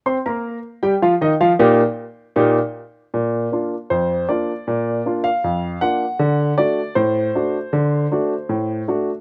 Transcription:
\new Staff \with { instrumentName = "Upright piano" } { \time 2/4 \key bes \major \tempo 4 = 78 << { <c' c'' c'''>16 <bes bes' bes''>8. <g g' g''>16 <f f' f''>16 <ees ees' ees''>16 <f f' f''>16 | <bes, bes ees' g'>8 r8 <bes, bes ees' g'>8 r8 | r4 c''8 d''8~ | d''8. f''8. ges''8~ |
ges''8 d''8 c''4~ | c''4. r8 | } \\ { r2 | r2 | bes,8 <bes d' f'>8 f,8 <bes d' f'>8 | bes,8 <bes d' f'>8 f,8 <bes d' f'>8 |
d8 <a d' fis'>8 a,8 <a d' fis'>8 | d8 <a d' fis'>8 a,8 <a d' fis'>8 | } >> }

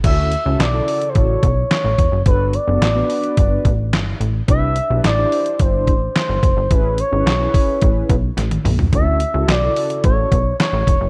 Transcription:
<<
  \new Staff \with { instrumentName = "Analog synth lead" } { \time 4/4 \key d \major \tempo 4 = 108 e''4 d''8.~ d''32 c''32 cis''4 cis''4 | b'8 d''2. r8 | e''4 d''8.~ d''32 d''32 c''4 c''4 | b'8 cis''2. r8 |
e''4 d''4 cis''4 cis''4 | }
  \new Staff \with { instrumentName = "Analog polysynth" } { \time 4/4 \key d \major <cis' e' fis' a'>8 r16 <cis' e' fis' a'>16 r16 <cis e' fis' a'>4~ <cis e' fis' a'>16 r4. | <b d' fis' a'>8 r16 <b d' fis' a'>16 r16 <b d' fis' b'>4~ <b d' fis' b'>16 r4. | <d' e' g' b'>8 r16 <d' e' g' b'>16 r16 <d' e' g' c''>4~ <d' e' g' c''>16 r4. | <cis' e' gis' b'>8 r16 <cis' e' gis' b'>16 r16 <cis' e' gis' b'>4~ <cis' e' gis' b'>16 r4. |
<cis' e' fis' a'>8 r16 <cis' e' fis' a'>16 r16 <cis e' fis' a'>4~ <cis e' fis' a'>16 r4. | }
  \new Staff \with { instrumentName = "Analog synth bass" } { \clef bass \time 4/4 \key d \major d,8. cis,16 b,,8 r8 a,,8 b,,8 r16 a,,16 e,,16 fis,,16 | g,,8. fis,,16 a,,8 r8 g,,8 a,,8 g,,8 a,,8 | c,8. b,,16 a,,8 r8 g,,8 a,,8 r16 g,,16 fis,,16 g,,16 | a,,8. gis,,16 b,,8 r8 a,,8 b,,8 a,,8 b,,8 |
d,8. cis,16 b,,8 r8 a,,8 b,,8 r16 a,,16 e,,16 fis,,16 | }
  \new DrumStaff \with { instrumentName = "Drums" } \drummode { \time 4/4 <cymc hh bd>8 hh8 <hc hh sn>8 hho16 hh16 <hh bd>8 <hh bd>8 <hc hh sn>8 <hh bd>8 | <hh bd>8 hh8 <hc hh sn>8 hho16 hh16 <hh bd>8 <hh bd>8 <hc hh sn>8 hh8 | <hh bd>8 hh8 <hc hh sn>8 hho16 hh16 <hh bd>8 <hh bd>8 <hc hh sn>8 <hh bd>8 | <hh bd>8 hh8 <hc hh sn>8 <hho bd>8 <hh bd>8 <hh bd>8 <hh sn>16 <hh tommh>16 <hho toml>16 tomfh16 |
<hh bd>8 hh8 <hc hh sn>8 hho16 hh16 <hh bd>8 <hh bd>8 <hc hh sn>8 <hh bd>8 | }
>>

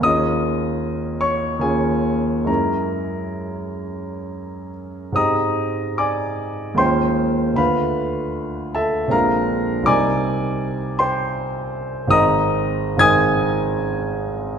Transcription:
\new Staff \with { instrumentName = "Grand piano" } { \time 3/4 \key aes \lydian \tempo 4 = 76 << { <ees'' ees'''>4. <des'' des'''>8 <aes' aes''>4 | <bes' bes''>2~ <bes' bes''>8 r8 | <ees'' bes'' ees'''>4 <d'' aes'' d'''>4 <c'' g'' c'''>4 | <b' f'' b''>4. <a' fes'' a''>8 <bes' f'' bes''>4 |
<d'' aes'' d'''>4. <c'' g'' c'''>4. | <ees'' bes'' ees'''>4 <aes'' ees''' aes'''>2 | } \\ { <ees, bes des' f' aes'>2 <ees, bes des' f'>4 | <ges, aes des' fes' aes'>2. | <aes, aes c' g'>2 <ees, aes bes des' f'>4 | <d, a d' f'>2 <bes,, aes c' d' f'>4 |
<c, g c' ees' bes'>2. | <aes,, aes c' ees' bes'>4 <aes,, aes c' ees' bes'>2 | } >> }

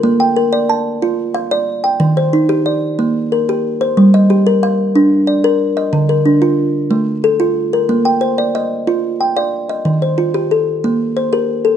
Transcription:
\new Staff \with { instrumentName = "Kalimba" } { \time 12/8 \key bes \major \tempo 4. = 122 << { bes'8 g''8 bes'4 a''4. r8 f''4. g''8~ | g''8 c''8 ees'4 d''4. r8 bes'4. c''8~ | c''8 ees''8 g'4 f''4. r8 d''4. ees''8~ | ees''8 bes'8 d'4. r4. a'4. bes'8~ |
bes'8 g''8 c''4 ees''4. r8 g''8 f''4 ees''8~ | ees''8 c''8 f'4 a'4. r8 c''8 bes'4 a'8 | } \\ { bes4 r8 d''4 r8 f'4 r8 d''4 r8 | ees4 r8 g'4 r8 bes4 r8 g'4 r8 | g4 r8 bes'4 r8 d'4 r8 bes'4 r8 | d4 r8 f'4 r8 a4 r8 f'4 r8 |
bes4 r8 d''4 r8 f'4 r8 d''4 r8 | ees4 r8 g'4 r8 bes4 r8 g'4 r8 | } >> }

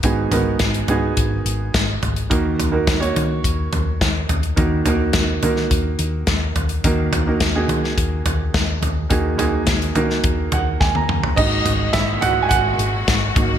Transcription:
<<
  \new Staff \with { instrumentName = "Upright piano" } { \time 4/4 \key dis \phrygian \tempo 4 = 106 << { r1 | r1 | r1 | r1 |
r2 r8 fis''8 gis''16 ais''8. | dis''4 e''8 fis''16. gis''32 fis''2 | } \\ { <b dis' fis' gis'>8 <b dis' fis' ais'>4 <b dis' fis' gis'>4.~ <b dis' fis' gis'>16 r8. | <ais dis' fis' ais'>8. <ais dis' fis' ais'>8 <ais dis' fis' cis''>4.~ <ais dis' fis' cis''>16 r4 | <ais dis' fis' ais'>8 <ais dis' fis' ais'>4 <ais dis' fis' ais'>4.~ <ais dis' fis' ais'>16 r8. | <ais dis' fis' ais'>8. <ais dis' fis' ais'>8 <ais dis' fis' gis'>4.~ <ais dis' fis' gis'>16 r4 |
<ais dis' fis' gis'>8 <ais dis' fis' gis'>4 <ais dis' fis' ais'>4.~ <ais dis' fis' ais'>16 r8. | dis'4 e'8 fis'8 fis'2 | } >> }
  \new Staff \with { instrumentName = "Upright piano" } { \clef bass \time 4/4 \key dis \phrygian gis,4. r2 r8 | dis4. r2 r8 | dis4. r2 r8 | dis4. r2 r8 |
dis4. r2 r8 | <gis ais fis'>2.~ <gis ais fis'>8 <fis ais dis'>8 | }
  \new Staff \with { instrumentName = "String section" } { \clef bass \time 4/4 \key dis \phrygian << { r1 | r1 | r1 | r1 |
r1 | fis'1 | } \\ { r1 | r1 | r1 | r1 |
r1 | <ais, gis>2.~ <ais, gis>8 <dis ais>8 | } >> }
  \new Staff \with { instrumentName = "Picked electric bass" } { \clef bass \time 4/4 \key dis \phrygian gis,,8 gis,,8 gis,,8 gis,8 gis,,8 gis,,8 gis,,8 gis,,8 | dis,8 dis,8 dis,8 dis8 dis,8 dis,8 dis,8 dis,8 | dis,8 dis,8 dis,8 dis8 dis,8 dis,8 dis,8 dis,8 | dis,8 dis,8 dis,8 dis8 dis,8 dis,8 dis,8 dis,8 |
dis,8 dis,8 dis,8 dis8 dis,8 dis,8 dis,8 dis,8 | gis,,8 gis,,8 gis,,8 gis,8 gis,,8 gis,,8 gis,,8 gis,,8 | }
  \new DrumStaff \with { instrumentName = "Drums" } \drummode { \time 4/4 <hh bd>8 <hh tomfh>8 <hh bd sn>16 hh16 <hh tomfh>8 <hh bd>8 hh8 <hh bd sn>8 <hh tomfh>16 hh16 | <hh bd>8 <hh tomfh>8 <hh bd sn>16 hh16 <hh tomfh>8 <hh bd>8 <hh tomfh>8 <hh bd sn>8 <hh tomfh>16 hh16 | <hh bd>8 <hh tomfh>8 <hh bd sn>8 <hh tomfh>16 sn16 <hh bd>8 hh8 <hh bd sn>8 <hh tomfh>16 hh16 | <hh bd>8 <hh tomfh>8 <hh bd sn>8 <hh tomfh>16 sn16 <hh bd>8 <hh tomfh>8 <hh bd sn>8 <hh tomfh>8 |
<hh bd>8 <hh tomfh>8 <hh bd sn>16 hh16 <hh tomfh>16 sn16 <hh bd>8 <hh tomfh>8 <bd sn>16 tommh16 toml16 tomfh16 | <cymc bd>8 <hh tomfh>8 <hh bd sn>8 <hh tomfh>8 <hh bd>8 hh8 <hh bd sn>8 <hh bd tomfh>8 | }
>>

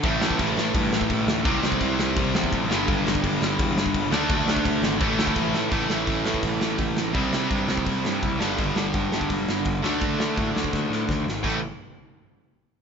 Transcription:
<<
  \new Staff \with { instrumentName = "Overdriven electric guitar" } { \clef bass \time 4/4 \key a \minor \tempo 4 = 168 <a, e a>1 | <c g c'>2.~ <c g c'>8 <g, d g>8~ | <g, d g>2.~ <g, d g>8 <d a d'>8~ | <d a d'>2 <a, e a>2 |
<a, e a>1 | <c g c'>2.~ <c g c'>8 <g, d g>8~ | <g, d g>2.~ <g, d g>8 <d a d'>8~ | <d a d'>2.~ <d a d'>8 r8 |
<a, e a>8 r2. r8 | }
  \new Staff \with { instrumentName = "Picked electric bass" } { \clef bass \time 4/4 \key a \minor a,,8 a,,8 a,,8 a,,8 g,8 a,8 a,,8 d,8 | c,8 c,8 c,8 c,8 c,8 e,8 a,,8 g,,8 | g,,8 g,,8 g,,8 g,,8 e,8 g,8 g,,8 d,8 | d,8 d,8 d,8 gis,,8 a,,8 d,8 a,,8 a,8 |
a,,8 a,,8 a,,8 a,8 a,,8 a,,8 a,,4 | c,8 c8 g,8 c,8 c,8 g,8 c,8 g,,8 | g,,8 g,,8 g,,8 g,8 g,,8 g,,8 g,,8 d,8 | d,8 d8 a,8 d,8 d,8 a,8 d,8 gis,,8 |
a,,8 r2. r8 | }
  \new DrumStaff \with { instrumentName = "Drums" } \drummode { \time 4/4 <cymc bd>8 sn16 bd16 <cymc bd>8 sn8 <cymc bd>8 sn16 bd16 <cymc bd>8 sn8 | <cymc bd>8 sn16 bd16 <cymc bd>8 sn8 <cymc bd>8 sn16 bd16 <cymc bd>8 sn8 | <cymc bd>8 sn16 bd16 <cymc bd>8 sn8 <cymc bd>8 sn16 bd16 <cymc bd>8 sn8 | <cymc bd>8 sn16 bd16 <cymc bd>8 sn8 <cymc bd>8 sn16 bd16 <cymc bd>8 sn8 |
<hho bd>8 sn8 <hho bd>8 sn16 bd16 <hho bd>8 sn8 <hho bd>8 sn8 | <hho bd>8 sn8 <hho bd>8 sn16 bd16 <hho bd>8 sn8 <hho bd>8 sn8 | <hho bd>8 sn8 <hho bd>8 sn16 bd16 <hho bd>8 sn8 <hho bd>8 sn8 | <hho bd>8 sn8 <hho bd>8 sn16 bd16 <bd sn>8 sn8 <bd sn>8 sn8 |
<cymc bd>4 r4 r4 r4 | }
>>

